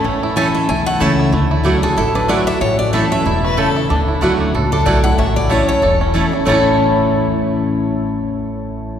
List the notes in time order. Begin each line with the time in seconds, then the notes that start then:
Already playing: A3 E4 A4
0.04 A1 A2 C#4
0.23 E4
0.36 E3 A3 C#4 E4 A4 C#5 G#5 A5
0.54 A3 E5
0.68 B1 E2 E4 G#5
0.86 A3 F#5
1.00 C#2 E3 A3 C#4 E4 C#5 E5 A5
1.19 E4
1.33 D2 D3 A3
1.51 E4
1.64 F#3 A3 D4 E4 F#4 D5 F#5
1.82 E4 F#4 G#4 A4
1.97 A1 A2 E4 A4
2.15 D4 B4
2.28 F#3 A3 E4 F#4 D5 F#5
2.47 D4 E5
2.61 A1 A2 C#4 C#5
2.79 D5
2.93 E3 A3 C#4 E4 A4 C#5 E5 A5
3.12 A3 E5
3.26 E1 B2 E4
3.44 A3 B4
3.57 C#3 A3 C#4 E4 A4 C#5 A5
3.76 E4
3.90 D2 D3 D4
4.08 E4
4.21 D2 F#3 A3 E4 F#4 D5 F#5
4.40 D4
4.54 C#2 A2 A4
4.72 D4 A4
4.85 B1 F#3 A3 E4 F#4 A4 D5 F#5
5.04 E4 F#5
5.18 A1 A2 C#4 E5
5.36 D5
5.49 E3 A3 C#4 E4 C#5 A5
5.69 C#4 C#5
5.82 E1 E2 A4
6.01 C#4
6.14 E3 A3 C#4 E4 A4 C#5 A5
6.32 C#4 E4
6.45 A1 A2 E3 A3 C#4 E4 C#5 A5
6.50 C#4 E4
6.54 A4